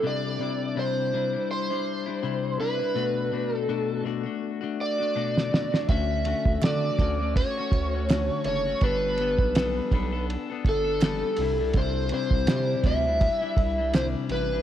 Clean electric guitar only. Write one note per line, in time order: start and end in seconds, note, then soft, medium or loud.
0.03 0.38 C3 medium
0.03 0.39 G3 medium
0.03 0.40 D4 medium
0.03 0.41 E4 medium
0.39 0.74 C3 medium
0.39 0.76 G3 medium
0.39 0.76 D4 medium
0.39 0.76 E4 medium
0.76 1.12 C3 medium
0.76 1.13 G3 medium
0.76 1.14 D4 medium
0.76 1.14 E4 medium
1.13 1.34 C3 medium
1.13 1.34 G3 medium
1.13 1.34 D4 medium
1.13 1.32 E4 medium
1.33 1.71 G3 soft
1.33 1.69 D4 medium
1.33 1.69 E4 medium
1.70 2.07 G3 soft
1.70 2.06 D4 medium
1.70 2.05 E4 medium
2.06 2.22 G3 soft
2.06 2.22 D4 soft
2.06 2.23 E4 medium
2.22 2.58 C3 medium
2.22 2.59 G3 medium
2.22 2.60 D4 medium
2.22 2.61 E4 medium
2.59 2.80 C3 medium
2.59 2.80 G3 medium
2.59 2.80 D4 medium
2.59 2.78 E4 medium
2.79 2.95 G3 soft
2.79 2.95 D4 soft
2.79 2.96 E4 medium
2.94 3.30 B2 medium
2.94 3.30 A3 medium
2.94 3.32 D4 medium
2.94 3.33 F#4 medium
3.31 3.67 B2 medium
3.31 3.68 A3 medium
3.31 3.68 D4 medium
3.31 3.68 F#4 medium
3.68 4.02 B2 medium
3.68 4.04 A3 medium
3.68 4.04 D4 loud
3.68 4.06 F#4 loud
4.04 4.25 B2 medium
4.04 4.25 A3 medium
4.04 4.24 D4 medium
4.04 4.22 F#4 medium
4.23 4.62 A3 medium
4.23 4.62 D4 medium
4.23 4.60 F#4 medium
4.61 5.00 A3 soft
4.61 4.99 D4 medium
4.61 4.97 F#4 medium
4.98 5.15 A3 soft
4.98 5.15 D4 soft
4.98 5.15 F#4 medium
5.15 5.50 B2 medium
5.15 5.51 A3 medium
5.15 5.51 D4 medium
5.15 5.53 F#4 medium
5.51 5.72 B2 medium
5.51 5.72 A3 medium
5.51 5.73 D4 medium
5.51 5.71 F#4 medium
5.72 5.88 A3 soft
5.72 5.90 D4 medium
5.72 5.89 F#4 medium
5.89 6.23 D3 medium
5.89 6.25 A3 medium
5.89 6.25 C#4 medium
5.89 6.26 F#4 medium
6.25 6.62 D3 medium
6.25 6.63 A3 medium
6.25 6.63 C#4 medium
6.25 6.63 F#4 medium
6.63 6.98 D3 medium
6.63 6.99 A3 medium
6.63 7.00 F#4 medium
6.99 7.19 D3 medium
6.99 7.20 A3 medium
6.99 7.20 C#4 medium
6.99 7.18 F#4 medium
7.19 7.57 A3 soft
7.19 7.57 C#4 medium
7.19 7.56 F#4 medium
7.57 7.94 A3 soft
7.57 7.93 C#4 medium
7.57 7.93 F#4 medium
7.94 8.10 A3 soft
7.94 8.10 C#4 soft
7.94 8.09 F#4 soft
8.10 8.44 D3 medium
8.10 8.46 A3 medium
8.10 8.46 C#4 medium
8.10 8.47 F#4 medium
8.46 8.66 D3 medium
8.46 8.66 A3 medium
8.46 8.66 C#4 medium
8.46 8.65 F#4 medium
8.66 8.83 A3 soft
8.66 8.83 C#4 soft
8.66 8.82 F#4 medium
8.83 9.18 G3 medium
8.83 9.20 B3 medium
8.83 9.19 D4 medium
8.83 9.20 A4 medium
9.19 9.54 G3 medium
9.19 9.55 B3 medium
9.19 9.56 D4 medium
9.19 9.56 A4 medium
9.55 9.90 G3 medium
9.55 9.92 B3 medium
9.55 9.93 D4 medium
9.55 9.92 A4 medium
9.92 10.12 G3 medium
9.92 10.12 B3 medium
9.92 10.12 D4 medium
9.92 10.11 A4 medium
10.13 10.50 B3 medium
10.13 10.49 D4 medium
10.13 10.49 A4 medium
10.50 10.87 B3 soft
10.50 10.85 D4 medium
10.50 10.83 A4 medium
10.84 11.02 B3 soft
10.84 11.02 D4 medium
10.84 11.01 A4 medium
11.02 11.38 G3 medium
11.02 11.39 B3 medium
11.02 11.39 D4 medium
11.02 11.39 A4 medium
11.39 11.59 C3 medium
11.39 11.59 G3 medium
11.39 11.59 D4 medium
11.39 11.58 E4 medium
11.59 11.76 G3 medium
11.59 11.76 D4 medium
11.59 11.75 E4 medium
11.76 12.11 C3 medium
11.76 12.12 G3 medium
11.76 12.12 D4 medium
11.76 12.13 E4 medium
12.12 12.47 C3 medium
12.12 12.48 G3 medium
12.12 12.49 D4 medium
12.12 12.48 E4 medium
12.48 12.83 C3 medium
12.48 12.84 G3 medium
12.48 12.85 D4 medium
12.48 12.85 E4 medium
12.84 13.04 C3 medium
12.84 13.05 G3 medium
12.84 13.05 D4 medium
12.84 13.05 E4 medium
13.06 13.43 G3 medium
13.06 13.42 D4 medium
13.06 13.40 E4 medium
13.42 13.79 G3 soft
13.42 13.78 D4 medium
13.42 13.77 E4 medium
13.78 13.93 G3 soft
13.78 13.94 D4 soft
13.78 13.94 E4 medium
13.93 14.29 C3 medium
13.93 14.30 G3 medium
13.93 14.31 D4 medium
13.93 14.31 E4 medium
14.30 14.51 C3 medium
14.30 14.51 G3 medium
14.30 14.51 D4 medium
14.30 14.51 E4 medium
14.52 14.62 G3 soft
14.52 14.62 D4 medium
14.52 14.62 E4 medium